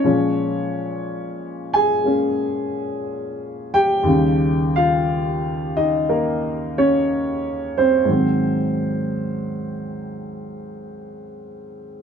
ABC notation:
X:1
M:4/4
L:1/8
Q:"Swing" 1/4=60
K:Ab
V:1 name="Upright piano"
d2 z [Aa]4 [Gg]- | [Gg] [Ff]2 [Ee] [B,B] [Dd]2 [Cc]- | [Cc]8 |]
V:2 name="Upright piano" clef=bass
[B,,F,A,D]4 [A,B,D]4 | [E,,D,E,G,]8 | [A,,E,_G,C]8 |]